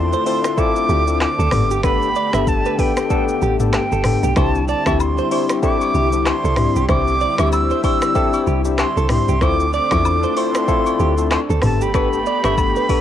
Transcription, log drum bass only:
0.00 0.15 E2 loud
0.89 1.27 D2 medium
1.39 1.49 D2 medium
1.52 2.13 G1 loud
2.34 2.67 G1 loud
3.42 3.79 A1 loud
3.92 4.15 G1 medium
4.23 4.33 B1 medium
4.37 4.74 C2 loud
4.87 5.20 D2 loud
5.94 6.32 C2 medium
6.44 6.68 C2 loud
6.76 6.86 B1 medium
6.89 7.27 C2 loud
7.39 7.73 D2 medium
8.47 8.85 C2 medium
8.97 9.21 C2 medium
9.29 9.43 C2 medium
9.42 9.79 D2 loud
9.92 10.25 E2 medium
11.00 11.37 D2 medium
11.50 11.60 D2 loud
11.63 12.24 G1 loud
12.44 12.78 G1 medium

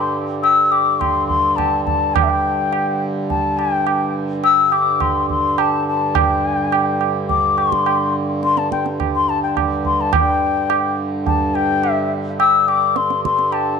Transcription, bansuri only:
0.00 0.14 C6 medium
0.43 0.73 E6 medium
0.72 1.01 D6 medium
1.00 1.27 C6 medium
1.27 1.58 C6 medium
1.56 1.84 A5 medium
1.85 2.16 A5 medium
2.14 2.25 G5 medium
2.23 2.31 E5 medium
2.29 3.01 G5 medium
3.30 3.60 A5 medium
3.58 4.16 G5 medium
4.45 4.74 E6 loud
4.73 5.03 D6 medium
5.01 5.30 C6 medium
5.30 5.61 C6 medium
5.59 5.87 A5 medium
5.88 6.18 A5 medium
6.16 7.01 G5 medium
7.29 7.59 D6 medium
7.58 8.15 C6 medium
8.44 8.59 C6 loud
8.58 8.71 A5 medium
8.72 8.85 G5 medium
9.15 9.31 C6 medium
9.29 9.43 A5 medium
9.43 9.56 G5 medium
9.86 10.02 C6 medium
10.01 10.14 A5 medium
10.15 10.95 G5 medium
11.26 11.56 A5 medium
11.55 11.92 G5 medium
11.92 12.11 E5 medium
12.40 12.70 E6 medium
12.68 12.98 D6 medium
12.97 13.24 C6 medium
13.24 13.54 C6 medium
13.53 13.80 A5 medium

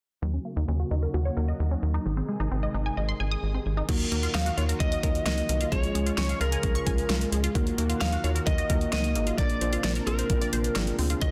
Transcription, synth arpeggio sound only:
0.22 0.28 F#3 medium
0.34 0.40 C#4 medium
0.45 0.51 A#3 medium
0.57 0.62 D#4 medium
0.68 0.74 C#4 medium
0.80 0.85 F#4 medium
0.91 0.97 D#4 medium
1.03 1.08 A#4 medium
1.14 1.20 F#4 medium
1.25 1.31 C#5 loud
1.37 1.43 A#4 medium
1.48 1.54 D#5 medium
1.71 1.77 C#4 medium
1.94 2.00 D#4 medium
2.06 2.11 D#3 medium
2.17 2.23 C4 medium
2.29 2.34 G#3 medium
2.40 2.46 D#4 medium
2.52 2.57 C4 medium
2.63 2.69 D#5 medium
2.74 2.80 D#4 medium
2.86 2.92 G#5 medium
2.97 3.03 D#5 medium
3.09 3.14 C6 loud
3.20 3.26 G#5 medium
3.31 3.37 D#6 medium
3.54 3.60 C4 medium
3.77 3.83 D#4 loud
3.89 3.95 F#3 medium
4.12 4.17 A#3 medium
4.23 4.29 F4 loud
4.35 4.40 D#4 medium
4.46 4.52 F#4 medium
4.57 4.63 F4 loud
4.69 4.75 A#4 medium
4.92 4.98 D#5 loud
5.03 5.09 A#4 medium
5.26 5.32 F#3 medium
5.49 5.55 A#3 medium
5.61 5.66 F4 loud
5.72 5.78 F3 medium
5.95 6.01 G#3 medium
6.06 6.12 F4 medium
6.18 6.24 C#4 medium
6.29 6.35 F5 medium
6.41 6.47 F4 medium
6.52 6.58 G#5 medium
6.75 6.81 C#6 loud
6.86 6.92 G#5 medium
7.09 7.15 F3 medium
7.32 7.38 G#3 medium
7.44 7.50 F4 loud
7.55 7.61 F#3 medium
7.78 7.84 A#3 medium
7.90 7.95 F4 loud
8.01 8.07 D#4 medium
8.12 8.18 F#4 medium
8.24 8.30 F4 medium
8.35 8.41 A#4 medium
8.58 8.64 D#5 loud
8.70 8.76 A#4 medium
8.93 8.99 F#3 medium
9.16 9.21 A#3 medium
9.27 9.33 F4 loud
9.38 9.44 A#3 medium
9.62 9.67 C4 medium
9.73 9.79 F4 loud
9.84 9.90 D4 medium
9.96 10.02 A#4 medium
10.07 10.13 F4 loud
10.19 10.24 C5 medium
10.41 10.47 D5 loud
10.53 10.59 C5 medium
10.76 10.82 A#3 medium
10.99 11.05 C4 medium
11.10 11.16 F4 medium
11.22 11.27 F#3 medium

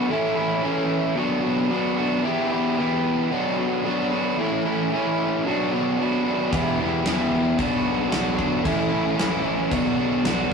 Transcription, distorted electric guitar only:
0.00 0.11 B3 medium
0.09 0.64 A2 medium
0.09 0.60 E3 medium
0.09 0.38 A3 medium
0.09 0.37 C#4 loud
0.09 0.35 E4 loud
0.36 0.62 A3 medium
0.36 0.63 C#4 medium
0.36 0.64 E4 medium
0.62 1.15 E3 medium
0.62 1.16 A3 medium
0.62 1.16 C#4 medium
0.62 1.17 E4 medium
1.15 1.70 B2 medium
1.15 1.69 F#3 loud
1.15 1.45 B3 loud
1.15 1.43 D4 loud
1.15 1.41 F#4 loud
1.43 1.71 B3 medium
1.43 1.71 D4 medium
1.43 1.72 F#4 medium
1.70 2.22 F#3 medium
1.70 1.99 B3 medium
1.70 1.97 D4 medium
1.70 1.95 F#4 medium
1.97 2.24 B3 medium
1.97 2.23 D4 medium
1.97 2.22 F#4 medium
2.23 2.77 E3 medium
2.23 2.53 B3 medium
2.23 2.51 E4 loud
2.23 2.49 G4 loud
2.50 2.78 B3 medium
2.50 2.78 E4 medium
2.50 2.79 G4 medium
2.78 3.30 E3 medium
2.78 3.32 B3 medium
2.78 3.30 E4 medium
2.78 3.31 G4 medium
3.31 3.85 B2 medium
3.31 3.83 F#3 loud
3.31 3.60 B3 loud
3.31 3.59 D4 loud
3.31 3.57 F#4 loud
3.58 3.86 B3 medium
3.58 3.86 D4 medium
3.58 3.87 F#4 medium
3.84 4.36 F#3 medium
3.84 4.14 B3 medium
3.84 4.12 D4 medium
3.84 4.10 F#4 medium
4.11 4.38 B3 medium
4.11 4.37 D4 medium
4.11 4.37 F#4 medium
4.37 4.91 A2 medium
4.37 4.90 E3 medium
4.37 4.67 A3 loud
4.37 4.65 C#4 loud
4.37 4.64 E4 loud
4.65 4.91 A3 medium
4.65 4.93 C#4 medium
4.65 4.93 E4 medium
4.91 5.43 E3 medium
4.91 5.44 A3 medium
4.91 5.44 C#4 medium
4.91 5.45 E4 medium
5.45 5.98 B2 medium
5.45 5.97 F#3 loud
5.45 5.75 B3 medium
5.45 5.73 D4 loud
5.45 5.70 F#4 loud
5.71 5.99 B3 medium
5.71 5.99 D4 medium
5.71 6.00 F#4 medium
5.98 6.50 F#3 medium
5.98 6.27 B3 medium
5.98 6.25 D4 medium
5.98 6.23 F#4 medium
6.24 6.51 B3 medium
6.24 6.51 D4 medium
6.24 6.49 F#4 medium
6.51 7.02 E3 medium
6.51 6.81 B3 loud
6.51 6.79 E4 medium
6.51 6.77 G4 loud
6.78 7.05 B3 medium
6.78 7.04 E4 medium
6.78 7.06 G4 medium
7.03 7.56 E3 medium
7.03 7.59 B3 medium
7.03 7.57 E4 medium
7.03 7.58 G4 medium
7.57 8.11 B2 medium
7.57 8.08 F#3 medium
7.57 7.86 B3 loud
7.57 7.84 D4 loud
7.57 7.82 F#4 medium
7.83 8.10 B3 medium
7.83 8.10 D4 medium
7.83 8.10 F#4 medium
8.09 8.62 F#3 medium
8.09 8.39 B3 medium
8.09 8.37 D4 medium
8.09 8.35 F#4 medium
8.36 8.64 B3 medium
8.36 8.63 D4 medium
8.36 8.62 F#4 medium
8.63 9.17 A2 loud
8.63 9.16 E3 medium
8.63 8.92 A3 loud
8.63 8.91 C#4 loud
8.63 8.89 E4 loud
8.90 9.17 A3 medium
8.90 9.18 C#4 medium
8.90 9.19 E4 medium
9.17 9.69 E3 medium
9.17 9.70 A3 medium
9.17 9.70 C#4 medium
9.17 9.71 E4 medium
9.70 10.24 B2 loud
9.70 10.23 F#3 medium
9.70 10.00 B3 loud
9.70 9.97 D4 loud
9.70 9.96 F#4 loud
9.97 10.25 B3 medium
9.97 10.25 D4 medium
9.97 10.26 F#4 medium
10.24 10.54 F#3 medium
10.24 10.54 B3 medium
10.24 10.52 D4 medium
10.24 10.51 F#4 loud

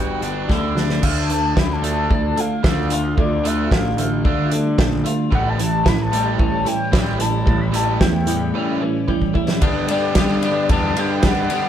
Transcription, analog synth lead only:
0.00 0.73 G5 medium
1.03 1.16 F5 loud
1.18 1.30 A5 medium
1.33 1.60 A5 loud
1.58 1.74 B5 loud
1.73 1.85 A5 medium
1.87 2.11 A5 loud
2.14 2.41 A5 loud
2.40 2.92 F5 medium
2.92 3.17 F5 medium
3.20 3.32 D5 medium
3.33 3.48 D5 medium
3.47 3.73 E5 medium
3.74 4.49 F5 medium
5.35 5.51 F#5 medium
5.49 5.61 A5 medium
5.63 5.90 A5 loud
5.88 6.03 B5 loud
6.02 6.13 A5 medium
6.14 6.38 A5 loud
6.40 6.69 A5 loud
6.67 7.23 G5 medium
7.21 7.48 A5 medium
7.48 7.62 A5 medium
7.61 7.77 B5 loud
7.75 8.01 A5 medium
8.01 8.78 G5 medium
9.90 10.15 D5 medium
10.17 10.66 D5 medium
10.71 11.01 A5 loud
11.00 11.29 G5 loud
11.28 11.69 F#5 loud

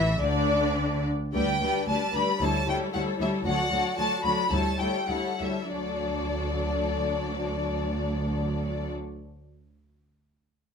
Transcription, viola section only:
0.20 1.04 D4 medium
1.34 1.61 G3 soft
1.34 1.61 D4 soft
1.62 1.87 G3 soft
1.62 1.88 D4 soft
1.89 2.13 G3 soft
1.89 2.13 D4 soft
2.14 2.39 G3 soft
2.14 2.40 D4 soft
2.40 2.67 G3 soft
2.40 2.67 E4 soft
2.68 2.93 G3 soft
2.68 2.92 E4 soft
2.93 3.18 G3 soft
2.93 3.18 E4 soft
3.19 3.45 G3 soft
3.19 3.45 E4 soft
3.46 3.70 F#3 soft
3.46 3.70 F#4 soft
3.71 3.96 F#3 soft
3.71 3.96 F#4 soft
3.97 4.22 F#3 soft
3.97 4.22 F#4 soft
4.23 4.50 F#3 soft
4.23 4.50 F#4 soft
4.51 4.79 G3 soft
4.51 4.78 E4 soft
4.79 5.07 G3 soft
4.79 5.07 E4 soft
5.08 5.38 G3 soft
5.08 5.39 E4 soft
5.39 5.70 G3 soft
5.39 5.71 E4 soft
5.71 8.90 F#3 soft
5.71 8.90 D4 soft

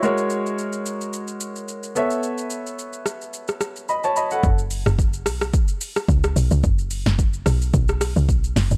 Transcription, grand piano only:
0.00 1.92 G#3 medium
0.00 0.17 E4 medium
0.00 1.92 F#4 medium
0.00 1.92 A#4 medium
0.05 1.93 C#5 medium
1.95 4.12 B3 medium
1.95 3.85 A4 medium
1.95 3.85 C#5 medium
1.95 3.85 E5 medium
3.89 4.03 D#5 medium
3.89 4.03 B5 medium
4.04 4.16 C#5 medium
4.04 4.16 A5 medium
4.16 4.31 D#5 medium
4.16 4.31 B5 medium
4.32 4.58 A4 medium
4.32 4.57 F#5 medium

